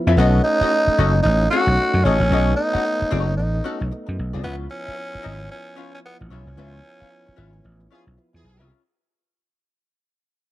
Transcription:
Already playing: F3 B3 E4
0.07 F2 C#4 F4 B4 E5
0.17 B1 A3 B3 C#4 D#4 F#4 A4 D#5
0.44 D#4, muted hollow-body jazz guitar stroke
0.61 C#4 F#4 A4 D#5, muted slap bass stroke
0.72 muted hollow-body jazz guitar stroke
0.87 muted slap bass stroke, muted hollow-body jazz guitar stroke
0.98 F#1 C#4 F#4 A4 D#5
1.15 muted hollow-body jazz guitar stroke
1.23 A1 D#4, muted hollow-body jazz guitar stroke
1.42 muted hollow-body jazz guitar stroke
1.51 C#4 F#4 A4 F#5
1.67 B1, muted hollow-body jazz guitar stroke
1.94 F#2, muted hollow-body jazz guitar stroke
2.04 A1 C#4 F#4 A4 D#5
2.20 A#1, muted hollow-body jazz guitar stroke
2.30 B1 B3 C#4 F#4 A4 D#5
2.56 D#4, muted hollow-body jazz guitar stroke
2.74 C#4 F#4 A4 F#5, muted slap bass stroke
2.85 muted hollow-body jazz guitar stroke
3.01 muted hollow-body jazz guitar stroke, muted slap bass stroke
3.11 F#1 C#4 F#4 A4 D#5
3.27 muted hollow-body jazz guitar stroke
3.37 A1 D#4, muted hollow-body jazz guitar stroke
3.54 muted hollow-body jazz guitar stroke
3.64 C#4 F#4 A4 F#5
3.80 B1, muted hollow-body jazz guitar stroke
3.91 muted hollow-body jazz guitar stroke
4.06 F#2, muted hollow-body jazz guitar stroke
4.19 B1
4.33 C2 C#4 F#4 A4 D#5
4.43 C#2 F3 B3 C#4 E4 F4 B4 E5
4.69 C#4, muted hollow-body jazz guitar stroke
4.86 C#4 F4 B4 E5, muted slap bass stroke
4.96 muted hollow-body jazz guitar stroke
5.12 muted hollow-body jazz guitar stroke, muted slap bass stroke
5.22 G#1 C#4 F4 B4 E5
5.39 muted hollow-body jazz guitar stroke
5.49 C#4, muted hollow-body jazz guitar stroke
5.66 muted hollow-body jazz guitar stroke
5.76 C#4 F4 B4 F5
5.93 C#4, muted hollow-body jazz guitar stroke
6.06 B3
6.19 A1, muted hollow-body jazz guitar stroke
6.30 B1 C#4 F4 B4 E5
6.47 C2, muted hollow-body jazz guitar stroke
6.57 C#2 C#4 F4 B4 E5
6.84 muted hollow-body jazz guitar stroke
7.00 C#4 F4 B4 F5, muted slap bass stroke
7.10 muted hollow-body jazz guitar stroke
7.26 muted hollow-body jazz guitar stroke, muted slap bass stroke
7.36 G#1 C#4 F4 B4 E5
7.53 muted hollow-body jazz guitar stroke
7.64 A1, muted hollow-body jazz guitar stroke
7.80 muted hollow-body jazz guitar stroke
7.90 F3 C#4 E4 F4 G#4 B4 F5
8.06 B1, muted hollow-body jazz guitar stroke
8.17 muted hollow-body jazz guitar stroke
8.33 E2 F3 E4 G#4, muted hollow-body jazz guitar stroke
8.44 B1
8.60 C2 C#4 F4 B4 E5

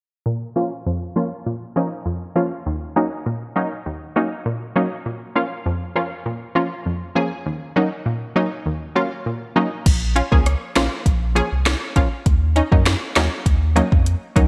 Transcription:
0.26 A#2
0.56 F3 A#3 C#4 F4
0.86 F2
1.16 F3 A#3 C#4 F4
1.46 A#2
1.76 F3 A#3 C#4 D#4
2.06 F2
2.36 F3 A#3 C#4 F4
2.66 D#2
2.96 F#3 A#3 C#4 D#4
3.26 A#2
3.56 F#3 A#3 C#4 D#4
3.86 D#2
4.16 F#3 A#3 C#4 D#4
4.46 A#2
4.76 F#3 A#3 C#4 D#4
5.06 A#2
5.35 F3 A#3 C#4 F4
5.66 F2
5.96 F3 A#3 C#4 F4
6.26 A#2
6.55 F3 A#3 C#4 F4
6.86 F2
7.15 F3 A#3 C#4 G#4
7.46 D#2
7.76 F#3 A#3 C#4 D#4
8.06 A#2
8.36 F#3 A#3 C#4 D#4
8.66 D#2
8.95 F#3 A#3 C#4 F4
9.26 A#2
9.56 F#3 A#3 C#4 D#4
9.86 A#1, kick, closed hi-hat, crash
10.16 C#4 F4, closed hi-hat
10.32 C#2 F3 A#3 C#4 G#4, kick
10.46 cross-stick, closed hi-hat
10.76 A#1 F3 A#3 C#4 F4, cross-stick, snare, closed hi-hat
11.06 A#1, kick, closed hi-hat
11.35 F3 A#3 C#4 G#4, closed hi-hat
11.52 C2
11.66 cross-stick, snare, closed hi-hat
11.96 A#1 F3 A#3 C#4 F4, kick, closed hi-hat
12.26 D#2, kick, closed hi-hat
12.56 C#4 D#4, closed hi-hat
12.72 F#2 F#3 A#3 C#4 D#4, kick
12.86 cross-stick, snare, closed hi-hat
13.16 D#2 F#3 A#3 C#4 D#4, cross-stick, snare, closed hi-hat
13.46 D#2, kick, closed hi-hat
13.76 F#3 A#3 C#4 D#4, closed hi-hat
13.92 F2, kick
14.06 closed hi-hat
14.36 D#2 F#3 A#3 C#4 D#4, kick, closed hi-hat

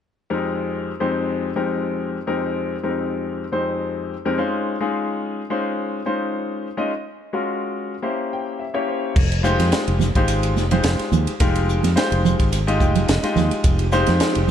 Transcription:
0.30 F2 G#3 C4 D#4 G4 A#4
1.00 F2 G#3 C4 D#4 G4 C5
1.55 F2 G#3 C4 D#4 G4 A#4
2.27 F2 G#3 C4 D#4 G4 A#4
2.83 F2 G#3 C4 D#4 G4 A#4
3.52 F2 G#3 C4 D#4 G4 C5
4.25 F2 G#3 C4 D#4 G4 A#4
4.38 G#3 C#4 D#4 F4 C5
4.81 G#3 C#4 D#4 F4 G#4
5.50 G#3 C#4 D#4 F4 C5
6.06 G#3 C#4 D#4 F4 C5
6.77 G#3 C#4 D#4 F4 D#5
7.33 G#3 C#4 F4 F#4 A#4
8.02 A#3 C#4 E4 G4 C5
8.33 G5
8.60 E5
8.74 A#3 C#4 E4 G4 C#5
8.88 C5
9.16 F1, kick, crash
9.32 ride
9.43 G#3 D#4 F4 G4 C5, hi-hat pedal
9.59 F2, snare, ride, high conga
9.72 muted fingered electric bass stroke, snare, hi-hat pedal, ride
9.88 F1, ride
10.00 snare, hi-hat pedal, high conga, low conga
10.15 G#1 G#3 D#4 F4 G4 C5, kick, ride
10.28 hi-hat pedal, ride
10.43 ride
10.56 F1, snare, hi-hat pedal, high conga
10.71 G#3 D#4 F4 G4 C5, ride, low conga
10.84 F1, snare, hi-hat pedal, ride
10.99 muted fingered electric bass stroke, snare, ride
11.12 D#2, hi-hat pedal, high conga, low conga
11.27 muted fingered electric bass stroke, ride
11.40 F1 G#3 D#4 F4 G4 A#4, kick, hi-hat pedal, ride
11.55 ride
11.69 hi-hat pedal
11.83 F2, snare, ride, high conga
11.96 G#3 D#4 F4 G4 C5, muted fingered electric bass stroke, snare, hi-hat pedal, ride
12.12 F1, ride
12.25 hi-hat pedal, high conga, low conga
12.39 G#1, kick, ride
12.52 hi-hat pedal, ride
12.67 G#3 D#4 F4 G4 D#5, ride
12.80 F1 G5, kick, hi-hat pedal, high conga
12.95 ride, low conga
13.07 F1 D#5, snare, hi-hat pedal, ride
13.23 G#3 D#4 F4 G4 D#5, muted fingered electric bass stroke, snare, ride
13.36 D#2, snare, hi-hat pedal, high conga, low conga
13.51 muted fingered electric bass stroke, ride
13.64 F1 F3 C4 D#4 G4, kick, hi-hat pedal, ride
13.79 ride
13.92 G#3 D#4 F4 G4 C5, snare, hi-hat pedal
14.06 F2, snare, ride, high conga
14.20 muted fingered electric bass stroke, snare, hi-hat pedal, ride
14.35 F1, ride

